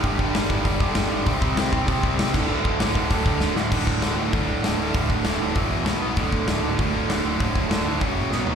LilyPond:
<<
  \new Staff \with { instrumentName = "Distorted electric guitar" } { \clef bass \time 4/4 \key d \mixolydian \tempo 4 = 196 <g, d g>8 <g, d g>8 <g, d g>8 <g, d g>8 <g, d g>8 <g, d g>8 <g, d g>8 <g, d g>8 | <c g c'>8 <c g c'>8 <c g c'>8 <c g c'>8 <c g c'>8 <c g c'>8 <c g c'>8 <d, a, d>8 | <d, a, d>8 <d, a, d>8 <d, a, d>8 <d, a, d>8 <d, a, d>8 <d, a, d>8 <d, a, d>8 <d, a, d>8 | <d, a, d>4 <d, a, d>8 <d, a, d>8 <d, a, d>4 <d, a, d>8 <d, a, d>8 |
<d, a, d>4 <d, a, d>8 <d, a, d>8 <e, b, e>4 <b, fis b>8 <b, fis b>8 | <d, a, d>4 <d, a, d>8 <d, a, d>8 <d, a, d>4 <d, a, d>8 <d, a, d>8 | <d, a, d>4 <d, a, d>8 <d, a, d>8 <fis, cis fis>4 <b, fis b>8 <b, fis b>8 | }
  \new Staff \with { instrumentName = "Distorted electric guitar" } { \clef bass \time 4/4 \key d \mixolydian <g, d g>8 <g, d g>8 <g, d g>8 <g, d g>8 <g, d g>8 <g, d g>8 <g, d g>8 <g, d g>8 | <c g c'>8 <c g c'>8 <c g c'>8 <c g c'>8 <c g c'>8 <c g c'>8 <c g c'>8 <d, a, d>8 | <d, a, d>8 <d, a, d>8 <d, a, d>8 <d, a, d>8 <d, a, d>8 <d, a, d>8 <d, a, d>8 <d, a, d>8 | <d, a, d>4 <d, a, d>8 <d, a, d>8 <d, a, d>4 <d, a, d>8 <d, a, d>8 |
<d, a, d>4 <d, a, d>8 <d, a, d>8 <e, b, e>4 <b, fis b>8 <b, fis b>8 | <d, a, d>4 <d, a, d>8 <d, a, d>8 <d, a, d>4 <d, a, d>8 <d, a, d>8 | <d, a, d>4 <d, a, d>8 <d, a, d>8 <fis, cis fis>4 <b, fis b>8 <b, fis b>8 | }
  \new Staff \with { instrumentName = "Picked electric bass" } { \clef bass \time 4/4 \key d \mixolydian g,,8 g,,8 g,,8 g,,8 g,,8 g,8 g,,8 g,,8 | c,4 c,8 c,8 c,8 c,8 c,8 d,,8 | d,,8 d,,8 d,,8 d,,8 d,,8 d,8 d,,8 d,,8 | d,,4 d,,8 d,,8 d,8 d,,8 d,,8 d,,8 |
d,,4 d,,8 d,,8 e,,8 e,,8 b,,8 b,,8 | d,,4 d,,8 d,,8 d,8 d,,8 d,,8 d,,8 | d,,4 d,,8 d,,8 fis,,8 bes,,8 b,,8 b,,8 | }
  \new DrumStaff \with { instrumentName = "Drums" } \drummode { \time 4/4 <hho bd>8 bd8 <hho sn>8 bd8 <hho bd>8 bd8 <hho sn>4 | <hho bd>8 bd8 <hho sn>8 bd8 <hho bd>8 bd8 <hho sn>8 <cymc bd>8 | r8 bd8 <hho sn>8 bd8 <hho bd>8 bd8 sn8 sn8 | <cymc bd>8 bd8 <hho sn>4 <hho bd>4 <hho sn>4 |
<hho bd>8 bd8 <hho sn>4 <hho bd>4 <hho sn>4 | <hho bd>8 bd8 <hho sn>4 <hho bd>4 <hho sn>4 | <hho bd>8 bd8 <hho sn>4 <hho bd>4 sn8 tomfh8 | }
>>